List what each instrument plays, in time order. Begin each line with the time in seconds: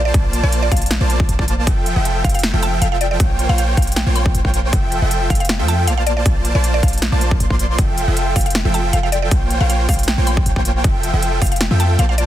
Already playing: 808-style bass A#1, supersaw synth A#3 F4 C5 D5 A5, digital synth lead A5
0.05 synth pluck D5
0.14 808-style bass A#1, kick, closed hi-hat
0.33 closed hi-hat
0.43 808-style bass A#1, supersaw synth A#3 F4 C5 D5 A5, synth pluck D5, digital synth lead A5
0.52 closed hi-hat
0.63 synth pluck D5
0.72 808-style bass A#1, supersaw synth A#3 F4 C5 D5 A5, synth pluck F5, digital synth lead A5, kick, closed hi-hat
0.77 closed hi-hat
0.82 closed hi-hat
0.86 closed hi-hat
0.91 snare, closed hi-hat
1.01 808-style bass A#1, supersaw synth A#3 F4 C5 D5 A5, digital synth lead A5
1.10 closed hi-hat
1.20 kick
1.29 808-style bass A#1, supersaw synth A#3 F4 C5 D5 A5, digital synth lead A5, closed hi-hat
1.39 kick
1.48 closed hi-hat
1.67 808-style bass F1, supersaw synth F3 F4 A4 E5, digital synth lead G5, kick, closed hi-hat
1.86 closed hi-hat
1.96 808-style bass F1, supersaw synth F3 F4 A4 E5 G5, digital synth lead G5
2.05 closed hi-hat
2.24 808-style bass F1, supersaw synth F3 A4 G5, synth pluck F5, digital synth lead G5, kick, closed hi-hat
2.29 closed hi-hat
2.34 synth pluck F5, closed hi-hat
2.39 closed hi-hat
2.43 snare, closed hi-hat
2.54 808-style bass F1, supersaw synth F3 F4 A4 E5 G5, digital synth lead G5
2.63 synth pluck A5, closed hi-hat
2.82 808-style bass F1, supersaw synth F3 F4 A4 E5 G5, synth pluck F5, digital synth lead G5, closed hi-hat
2.92 synth pluck F5
3.01 synth pluck D5, closed hi-hat
3.11 synth pluck D5
3.20 808-style bass A#1, supersaw synth A#3 F4 C5 G5, digital synth lead G5, kick, closed hi-hat
3.39 closed hi-hat
3.49 808-style bass A#1, supersaw synth A#3 F4 C5 C#5 G5, synth pluck F5, digital synth lead G5
3.58 synth pluck F5, closed hi-hat
3.77 808-style bass A#1, supersaw synth A#3 F4 C#5, synth pluck F5, digital synth lead G5, kick, closed hi-hat
3.82 closed hi-hat
3.87 closed hi-hat
3.92 closed hi-hat
3.96 synth pluck G5, snare, closed hi-hat
4.06 808-style bass A#1, supersaw synth A#3 F4 C5 C#5 G5, digital synth lead G5
4.15 synth pluck C6, closed hi-hat
4.26 kick
4.35 808-style bass A#1, supersaw synth A#3 F4 C5 C#5 G5, digital synth lead G5, closed hi-hat
4.45 kick
4.54 closed hi-hat
4.73 808-style bass F1, supersaw synth F3 F4 A4, kick, closed hi-hat
4.92 closed hi-hat
5.02 808-style bass F1, supersaw synth F3 F4 A4 E5 G5, digital synth lead G5
5.11 closed hi-hat
5.30 808-style bass F1, synth pluck F5, digital synth lead G5, kick, closed hi-hat
5.35 closed hi-hat
5.40 synth pluck F5, closed hi-hat
5.45 closed hi-hat
5.49 snare, closed hi-hat
5.59 808-style bass F2, supersaw synth F3 F4 A4 E5 G5, digital synth lead G5
5.68 synth pluck A5, closed hi-hat
5.87 808-style bass A#1, supersaw synth A#3 F4 C5 D5 A5, synth pluck F5, digital synth lead A5, closed hi-hat
5.98 synth pluck F5
6.07 synth pluck D5, closed hi-hat
6.17 synth pluck D5
6.26 808-style bass A#1, supersaw synth F4, kick, closed hi-hat
6.45 closed hi-hat
6.55 808-style bass A#1, supersaw synth A#3 F4 C5 D5 A5, synth pluck D5, digital synth lead A5
6.64 closed hi-hat
6.74 synth pluck D5
6.83 808-style bass A#1, synth pluck F5, digital synth lead A5, kick, closed hi-hat
6.88 closed hi-hat
6.93 closed hi-hat
6.98 closed hi-hat
7.02 snare, closed hi-hat
7.12 808-style bass A#1, supersaw synth A#3 F4 C5 D5 A5, digital synth lead A5
7.21 closed hi-hat
7.31 kick
7.40 808-style bass A#1, supersaw synth A#3 F4 C5 D5 C6, digital synth lead C6, closed hi-hat
7.50 kick
7.59 closed hi-hat
7.78 808-style bass F1, supersaw synth F3, digital synth lead G5, kick, closed hi-hat
7.98 closed hi-hat
8.08 808-style bass F1, supersaw synth F3 F4 A4 E5 G5, digital synth lead G5
8.17 closed hi-hat
8.36 808-style bass F1, supersaw synth F3 F4 A4 E5 G5, synth pluck F5, digital synth lead G5, kick, open hi-hat
8.41 closed hi-hat
8.46 synth pluck F5, closed hi-hat
8.50 closed hi-hat
8.55 snare, closed hi-hat
8.65 808-style bass F1, supersaw synth F3 F4 A4 E5 G5, digital synth lead G5
8.74 synth pluck A5, closed hi-hat
8.93 808-style bass F1, supersaw synth F3 F4 A4 E5 G5, synth pluck F5, digital synth lead G5, closed hi-hat
9.03 synth pluck F5
9.12 synth pluck D5, closed hi-hat
9.22 synth pluck D5
9.31 808-style bass A#1, supersaw synth F4, digital synth lead G5, kick, closed hi-hat
9.50 closed hi-hat
9.61 808-style bass A#1, supersaw synth A#3 F4 C5 C#5 G5, synth pluck F5, digital synth lead G5
9.70 synth pluck F5, closed hi-hat
9.89 808-style bass A#1, supersaw synth A#3, synth pluck F5, digital synth lead G5, kick, open hi-hat
9.94 closed hi-hat
9.99 closed hi-hat
10.03 closed hi-hat
10.08 synth pluck G5, snare, closed hi-hat
10.18 808-style bass A#1, supersaw synth A#3 F4 C5 C#5 G5, digital synth lead G5
10.27 synth pluck C6, closed hi-hat
10.37 kick
10.46 808-style bass A#1, supersaw synth A#3 F4 C5 C#5 G5, digital synth lead G5, closed hi-hat
10.56 kick
10.65 closed hi-hat
10.84 808-style bass F1, supersaw synth F3 F4 A4 E5 G5, digital synth lead G5, kick, closed hi-hat
11.03 closed hi-hat
11.13 808-style bass F1, supersaw synth F3 F4 A4 E5 G5, digital synth lead G5
11.22 closed hi-hat
11.42 808-style bass F1, supersaw synth F3 F4 E5 G5, synth pluck F5, digital synth lead G5, kick, open hi-hat
11.47 closed hi-hat
11.52 synth pluck F5, closed hi-hat
11.56 closed hi-hat
11.61 snare, closed hi-hat
11.71 808-style bass F2, supersaw synth F3 F4 A4 E5 G5, digital synth lead G5
11.80 synth pluck A5, closed hi-hat
11.99 808-style bass A#1, supersaw synth A#3 F4 C5 D5 A5, synth pluck F5, digital synth lead A5, closed hi-hat
12.09 synth pluck F5
12.18 synth pluck D5, closed hi-hat